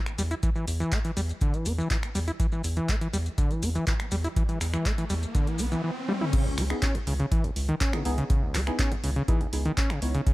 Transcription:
0.06 finger snap, closed hi-hat, maracas
0.18 E2 G3, open hi-hat, maracas
0.31 E4, closed hi-hat, maracas
0.43 E3, kick, closed hi-hat, maracas
0.55 E3, maracas
0.68 E2, open hi-hat, maracas
0.80 E3, closed hi-hat, maracas
0.92 A3, kick, clap, closed hi-hat, maracas
1.05 E3, closed hi-hat, maracas
1.17 E2 G3, open hi-hat, maracas
1.29 closed hi-hat, maracas
1.41 D3, kick, closed hi-hat, maracas
1.54 E3, closed hi-hat, maracas
1.66 E2 B3, open hi-hat, maracas
1.78 E3, closed hi-hat, maracas
1.90 E3, kick, clap, closed hi-hat, maracas
2.02 finger snap, closed hi-hat, maracas
2.15 E2 G3, open hi-hat, maracas
2.27 E4, closed hi-hat, maracas
2.40 E3, kick, closed hi-hat, riser, maracas
2.52 E3, maracas
2.64 E2, open hi-hat, maracas
2.76 E3, closed hi-hat, maracas
2.89 A3, kick, clap, closed hi-hat, maracas
3.01 E3, closed hi-hat, maracas
3.13 E2 G3, open hi-hat, maracas
3.26 closed hi-hat, maracas
3.38 D3, kick, closed hi-hat, maracas
3.51 E3, closed hi-hat, maracas
3.63 E2 B3, open hi-hat, maracas
3.75 E3, closed hi-hat, maracas
3.87 E3, kick, clap, closed hi-hat, maracas
3.99 finger snap, closed hi-hat, maracas
4.11 E2 G3, open hi-hat, maracas
4.24 E4, closed hi-hat, maracas
4.36 E3, kick, closed hi-hat, maracas
4.49 E3, closed hi-hat, maracas
4.61 E2, finger snap, open hi-hat, maracas
4.73 E3, finger snap, closed hi-hat, maracas
4.86 A3, kick, clap, closed hi-hat, maracas
4.98 E3, closed hi-hat, maracas
5.10 E2 G3, open hi-hat, maracas
5.23 closed hi-hat, maracas
5.35 D3, kick, closed hi-hat, maracas
5.47 E3, closed hi-hat, maracas
5.58 B1 B3, open hi-hat, maracas
5.72 E3, closed hi-hat, maracas
5.84 E3
6.08 G3, high tom
6.21 E4, mid tom
6.33 C#3, kick, closed hi-hat, crash
6.46 C#2
6.58 C#2 G#3, finger snap, open hi-hat
6.70 B3 D#4 E4 G#4, finger snap, closed hi-hat
6.82 C#4, kick, clap, closed hi-hat
6.95 C#2, closed hi-hat
7.07 C#2 C#3, open hi-hat
7.20 C#3, closed hi-hat
7.32 E3, kick, closed hi-hat
7.44 C#2, closed hi-hat
7.56 C#2, open hi-hat
7.69 D#3, closed hi-hat
7.81 C#4, kick, clap, closed hi-hat
7.93 C#3 B3 D#4 E4 G#4, finger snap, closed hi-hat
8.05 C#2 B3 D#4 E4 G#4, open hi-hat
8.18 C#3, closed hi-hat
8.30 C#3, kick, closed hi-hat
8.42 C#2
8.55 C#2 G#3, finger snap, clap, open hi-hat
8.67 B3 D#4 E4 G#4, finger snap, closed hi-hat
8.79 C#4, kick, clap, closed hi-hat
8.92 C#2, closed hi-hat
9.04 C#2 C#3, open hi-hat
9.16 C#3, closed hi-hat
9.28 E3 B3 D#4 E4 G#4, kick, closed hi-hat
9.41 C#2, closed hi-hat
9.53 C#2 B3 D#4 E4 G#4, open hi-hat
9.65 D#3, closed hi-hat
9.77 C#4, kick, clap, closed hi-hat
9.90 C#3, finger snap, closed hi-hat
10.02 C#2 B3 D#4 E4 C#5, open hi-hat
10.15 C#3, closed hi-hat
10.27 C#3, kick, closed hi-hat

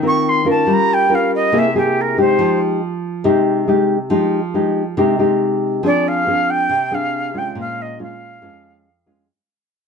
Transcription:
Already playing: D#3
0.03 C4 F4 A#4
0.07 C#6
0.28 C6
0.45 C#4 F4 A#4
0.50 A5
0.67 G3
0.73 A#5
0.93 G5
1.09 C#4 F4 A#4
1.14 F5
1.35 D#5
1.52 C3 A#3 E4 G#4
1.58 E5
1.74 A#3 E4 G4 G#4
2.01 A#4
2.17 G#3 D#4 G4 C5
2.39 F3
3.24 C3 G#3 D#4 G4
3.68 G#3 D#4 G4
4.10 F3 G#3 D#4 G4
4.54 G#3 D#4 G4
4.97 C3 G#3 D#4 G4
5.19 G#3 D#4 G4
5.83 F3 C4 D4 G#4 D5
6.08 F5
6.27 C4 D4 G#4
6.50 G5
6.69 C3
6.91 C4 D4 G#4 F5
7.34 G#3 C#4 F4 G5
7.55 A#2
7.60 F5
7.81 D#5
7.99 G#3 C#4 F4 F5
8.42 F2 G#3 C#4 F4
9.06 G#3 C#4 F4

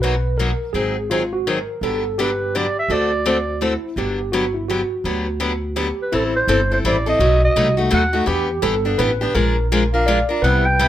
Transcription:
Already playing: B1
0.02 B2 F#3 A#3 D#4 F#4 B4
0.38 B2 F#3 A#3 D#4 F#4 A#4
0.73 G#1 D#3 F#3 C4 D#4 G#4
1.10 D#3 F#3 C4 D#4 F4 G#4
1.33 F#4
1.47 D#3 F#3 C4 D#4 G#4 A#4
1.81 G1 D3 F#3 B3 D4 G4 A4
2.18 D3 F#3 B3 D4 G4 B4
2.55 D3 F#3 B3 D4 G4 D5
2.79 E5
2.88 D2 D3 A3 C4 F#4 A4 D5
3.26 D3 A3 C4 F#4 A4 D5
3.61 D3 A3 C4 E4 F#4 A4
3.96 G1 D3 F#3 B3 D4 G4
4.32 D3 F#3 B3 D4 F#4 G4
4.54 E4
4.68 D3 F#3 B3 D4 F#4 G4
5.04 D2 D3 F#3 B3 D4 G4
5.40 D3 F#3 B3 D4 G4
5.76 D3 F#3 B3 D4 G4
6.02 B4
6.12 A1 E3 G3 C4 E4 A4
6.36 C5
6.47 G1 E3 G3 C4 E4 A4
6.71 C4 E4 A4 C5
6.84 A1 E3 G3 C4 E4 A4 D5
7.06 C4 E4 A4 D#5
7.19 B1 B2 F#3 A3 D#4 F#4
7.45 D#5
7.56 C2 B2 F#3 A3 D#4 F#4
7.77 A3 D#4 F#4
7.91 D#2 B2 F#3 A3 D#4 F#4 F#5
8.13 A3 D#4 F#4
8.26 E2 E3 B3 D4 G4
8.62 G1 E3 B3 D4 G4 A4
8.85 B3 D4 G4
8.98 A1 E3 B3 D4 G4 B4
9.21 B3 D4 G4
9.34 A#1 F3 G#3 D4 F4 A#4
9.72 F3 G#3 D4 F4 A#4
9.94 D4 F4 A#4 F5
10.06 F3 G#3 D4 F4 A#4 D5
10.29 D4 F4 A#4
10.42 C2 C3 G3 B3 E4 G4 B4 F#5
10.66 G5
10.79 C3 G3 B3 E4 G4

